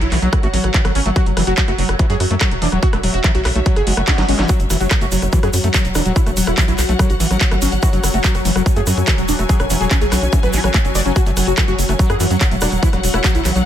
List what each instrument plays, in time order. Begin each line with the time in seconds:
Already playing: synth texture F#3, string section C#4 F#4 C#5 F#5
0.01 analog synth bass B1, analog synth lead E4, closed hi-hat
0.12 analog synth bass B1, acid bass E3, analog synth lead F#3, cross-stick, clap, open hi-hat
0.22 analog synth bass B1, acid bass F#3, analog synth lead F#3, closed hi-hat
0.33 analog synth lead F#3, kick, cross-stick, closed hi-hat
0.43 analog synth bass A1, acid bass A3, analog synth lead F#4, closed hi-hat
0.53 analog synth bass A1, acid bass F#3, analog synth lead F#3, open hi-hat
0.64 analog synth bass A1, analog synth lead F#3, cross-stick, closed hi-hat
0.74 acid bass E3, kick, clap, closed hi-hat
0.85 analog synth bass G#1, analog synth lead F#3, acid bass F#3, cross-stick, closed hi-hat
0.95 analog synth bass G#1, analog synth lead C#4, open hi-hat
1.06 analog synth bass G#1, analog synth lead F#3, acid bass A3, closed hi-hat
1.16 acid bass F#3, analog synth lead F#4, kick, cross-stick, closed hi-hat
1.26 analog synth bass F#1, analog synth lead F#3, closed hi-hat
1.37 analog synth bass F#1, acid bass E3, analog synth lead F#3, cross-stick, open hi-hat
1.47 analog synth bass F#1, acid bass F#3, analog synth lead F#4, closed hi-hat
1.58 analog synth lead F#3, kick, clap, closed hi-hat
1.68 analog synth bass F#1, acid bass A3, analog synth lead F#4, cross-stick, closed hi-hat
1.78 analog synth bass F#1, analog synth lead F#3, acid bass F#3, open hi-hat
1.89 analog synth bass F#1, analog synth lead F#3, cross-stick, closed hi-hat
1.99 acid bass E3, analog synth lead F#3, string section E5, kick, closed hi-hat
2.10 analog synth bass F#2, acid bass F#3, analog synth lead G#4, closed hi-hat
2.20 analog synth bass F#2, analog synth lead F#3, cross-stick, open hi-hat
2.31 analog synth bass F#2, analog synth lead F#3, acid bass A3, closed hi-hat
2.41 acid bass F#3, kick, cross-stick, clap, closed hi-hat
2.51 analog synth bass E1, analog synth lead F#3, closed hi-hat
2.62 analog synth bass E1, acid bass E3, analog synth lead D4, open hi-hat
2.72 analog synth bass E1, analog synth lead F#3, acid bass F#3, cross-stick, closed hi-hat
2.83 analog synth lead F#4, kick, closed hi-hat
2.93 analog synth bass E1, analog synth lead F#3, acid bass A3, cross-stick, closed hi-hat
3.03 analog synth bass E1, acid bass F#3, analog synth lead F#3, open hi-hat
3.14 analog synth bass E1, analog synth lead F#4, closed hi-hat
3.24 acid bass E3, analog synth lead F#3, kick, cross-stick, clap, closed hi-hat
3.35 analog synth bass B1, acid bass F#3, analog synth lead F#4, closed hi-hat
3.45 analog synth bass B1, analog synth lead F#3, cross-stick, clap, open hi-hat
3.56 analog synth bass B1, analog synth lead F#3, acid bass A3, closed hi-hat
3.66 analog synth lead F#3, acid bass F#3, kick, closed hi-hat, swell
3.76 analog synth bass F#1, analog synth lead G#4, cross-stick, closed hi-hat
3.87 analog synth bass F#1, analog synth lead F#3, acid bass G#3, open hi-hat
3.97 analog synth bass F#1, analog synth lead F#3, acid bass A3, cross-stick, closed hi-hat
4.08 kick, snare, clap, closed hi-hat
4.18 analog synth bass G#1, acid bass F#3, analog synth lead F#3, snare, closed hi-hat
4.28 analog synth bass G#1, acid bass G#3, analog synth lead C#4, open hi-hat
4.39 analog synth bass G#1, acid bass E3, analog synth lead F#3, snare, closed hi-hat
4.49 acid bass F#3, synth texture F#3, analog synth lead F#4, kick, closed hi-hat, shaker
4.60 analog synth bass F#1, analog synth lead F#3, closed hi-hat, shaker
4.70 analog synth bass F#1, acid bass E3, analog synth lead F#3, cross-stick, open hi-hat, shaker
4.81 analog synth bass F#1, acid bass F#3, analog synth lead F#4, closed hi-hat, shaker
4.90 analog synth lead F#3, kick, cross-stick, clap, closed hi-hat, shaker
5.01 analog synth bass F#1, acid bass A3, analog synth lead F#4, closed hi-hat, shaker
5.12 analog synth bass F#1, analog synth lead F#3, acid bass F#3, open hi-hat, shaker
5.22 analog synth bass F#1, analog synth lead F#3, cross-stick, closed hi-hat, shaker
5.32 acid bass E3, analog synth lead F#3, string section F#5, kick, closed hi-hat, shaker
5.43 analog synth bass F#2, acid bass F#3, analog synth lead G#4, cross-stick, closed hi-hat, shaker
5.53 analog synth bass F#2, analog synth lead F#3, open hi-hat, shaker
5.64 analog synth bass F#2, analog synth lead F#3, acid bass A3, closed hi-hat, shaker
5.74 acid bass F#3, kick, cross-stick, clap, closed hi-hat, shaker
5.85 analog synth bass E1, analog synth lead F#3, closed hi-hat, shaker
5.95 analog synth bass E1, acid bass E3, analog synth lead D4, cross-stick, open hi-hat, shaker
6.05 analog synth bass E1, acid bass F#3, analog synth lead F#3, closed hi-hat, shaker
6.16 analog synth lead E4, kick, closed hi-hat, shaker
6.26 analog synth bass E1, analog synth lead F#3, acid bass A3, cross-stick, closed hi-hat, shaker
6.37 analog synth bass E1, acid bass F#3, analog synth lead F#3, open hi-hat, shaker
6.47 analog synth bass E1, analog synth lead E4, cross-stick, closed hi-hat
6.58 acid bass E3, analog synth lead F#3, kick, clap, closed hi-hat, shaker
6.68 analog synth bass B1, acid bass F#3, analog synth lead E4, closed hi-hat, shaker
6.78 analog synth bass B1, analog synth lead F#3, cross-stick, clap, open hi-hat, shaker
6.89 analog synth bass B1, analog synth lead F#3, acid bass A3, closed hi-hat, shaker
6.99 acid bass F#3, analog synth lead F#3, kick, cross-stick, closed hi-hat, shaker
7.10 analog synth bass A1, analog synth lead F#4, closed hi-hat, shaker
7.20 analog synth bass A1, acid bass E3, analog synth lead F#3, open hi-hat, shaker
7.31 analog synth bass A1, acid bass F#3, analog synth lead F#3, cross-stick, closed hi-hat, shaker
7.41 kick, clap, closed hi-hat, shaker
7.51 analog synth bass G#1, analog synth lead F#3, acid bass A3, cross-stick, closed hi-hat, shaker
7.62 analog synth bass G#1, acid bass F#3, analog synth lead C#4, open hi-hat, shaker
7.72 analog synth bass G#1, analog synth lead F#3, closed hi-hat, shaker
7.82 acid bass E3, analog synth lead F#4, kick, cross-stick, closed hi-hat, shaker
7.93 analog synth bass F#1, acid bass F#3, analog synth lead F#3, closed hi-hat, shaker
8.04 analog synth bass F#1, analog synth lead F#3, cross-stick, open hi-hat, shaker
8.14 analog synth bass F#1, acid bass A3, analog synth lead F#4, closed hi-hat, shaker
8.24 acid bass F#3, analog synth lead F#3, kick, clap, closed hi-hat, shaker
8.35 analog synth bass F#1, analog synth lead F#4, cross-stick, closed hi-hat, shaker
8.45 analog synth bass F#1, acid bass E3, analog synth lead F#3, open hi-hat, shaker
8.56 analog synth bass F#1, acid bass F#3, analog synth lead F#3, cross-stick, closed hi-hat, shaker
8.66 analog synth lead F#3, string section G#5, kick, closed hi-hat, shaker
8.76 analog synth bass F#2, acid bass A3, analog synth lead G#4, closed hi-hat, shaker
8.87 analog synth bass F#2, acid bass F#3, analog synth lead F#3, cross-stick, open hi-hat, shaker
8.97 analog synth bass F#2, analog synth lead F#3, closed hi-hat, shaker
9.07 acid bass E3, kick, cross-stick, clap, closed hi-hat, shaker
9.18 analog synth bass E1, acid bass F#3, analog synth lead F#3, closed hi-hat, shaker
9.28 analog synth bass E1, analog synth lead D4, open hi-hat, shaker
9.39 analog synth bass E1, analog synth lead F#3, acid bass A3, cross-stick, closed hi-hat, shaker
9.49 acid bass F#3, analog synth lead G#4, kick, closed hi-hat, shaker
9.59 analog synth bass E1, analog synth lead C#4, cross-stick, closed hi-hat, shaker
9.70 analog synth bass E1, acid bass E3, analog synth lead C#4, open hi-hat, shaker
9.81 analog synth bass E1, acid bass F#3, analog synth lead G#4, closed hi-hat, shaker
9.91 analog synth lead C#4, kick, cross-stick, clap, closed hi-hat, shaker
10.01 analog synth bass B1, acid bass A3, analog synth lead G#4, closed hi-hat, shaker
10.12 analog synth bass B1, acid bass F#3, analog synth lead C#4, cross-stick, clap, open hi-hat, shaker
10.22 analog synth bass B1, analog synth lead C#4, closed hi-hat, shaker
10.33 acid bass E3, analog synth lead C#4, kick, closed hi-hat, shaker
10.43 analog synth bass A1, acid bass F#3, analog synth lead B4, cross-stick, closed hi-hat, shaker
10.53 analog synth bass A1, analog synth lead C#4, acid bass F#4, open hi-hat, shaker
10.64 analog synth bass A1, acid bass F#3, analog synth lead C#4, cross-stick, closed hi-hat, shaker
10.74 acid bass A3, kick, clap, closed hi-hat, shaker
10.85 analog synth bass F#1, analog synth lead C#4, closed hi-hat, shaker
10.95 analog synth bass F#1, acid bass F#3, analog synth lead D5, cross-stick, open hi-hat, shaker
11.06 analog synth bass F#1, acid bass F#3, analog synth lead C#4, closed hi-hat, shaker
11.16 analog synth lead F#4, kick, closed hi-hat, shaker
11.26 analog synth bass F#1, analog synth lead F#3, acid bass A3, closed hi-hat, shaker
11.37 analog synth bass F#1, analog synth lead F#3, acid bass F#3, cross-stick, open hi-hat, shaker
11.47 analog synth bass F#1, analog synth lead F#4, closed hi-hat, shaker
11.58 acid bass E3, analog synth lead F#3, kick, cross-stick, clap, closed hi-hat, shaker
11.68 analog synth bass F#1, acid bass F#3, analog synth lead F#4, closed hi-hat, shaker
11.78 analog synth bass F#1, analog synth lead F#3, open hi-hat, shaker
11.89 analog synth bass F#1, analog synth lead F#3, acid bass A3, cross-stick, closed hi-hat, shaker
11.99 analog synth lead F#3, acid bass F#3, string section F#5, kick, closed hi-hat, shaker
12.10 analog synth bass F#2, analog synth lead G#4, cross-stick, closed hi-hat, shaker
12.20 analog synth bass F#2, acid bass E3, analog synth lead F#3, open hi-hat, shaker
12.30 analog synth bass F#2, acid bass F#3, analog synth lead F#3, closed hi-hat, shaker
12.41 kick, cross-stick, clap, closed hi-hat, shaker
12.51 analog synth bass E1, analog synth lead F#3, acid bass A3, closed hi-hat, shaker
12.61 analog synth bass E1, acid bass F#3, analog synth lead D4, cross-stick, open hi-hat, shaker
12.72 analog synth bass E1, analog synth lead F#3, closed hi-hat, shaker
12.83 acid bass E3, analog synth lead E4, kick, closed hi-hat, shaker
12.93 analog synth bass E1, acid bass F#3, analog synth lead F#3, cross-stick, closed hi-hat, shaker
13.03 analog synth bass E1, analog synth lead F#3, open hi-hat, shaker
13.14 analog synth bass E1, acid bass A3, analog synth lead E4, cross-stick, closed hi-hat
13.24 acid bass F#3, analog synth lead F#3, kick, clap, closed hi-hat, shaker
13.35 analog synth bass B1, analog synth lead E4, closed hi-hat, shaker
13.45 analog synth bass B1, acid bass E3, analog synth lead F#3, cross-stick, clap, open hi-hat, shaker
13.56 analog synth bass B1, acid bass F#3, analog synth lead F#3, closed hi-hat, shaker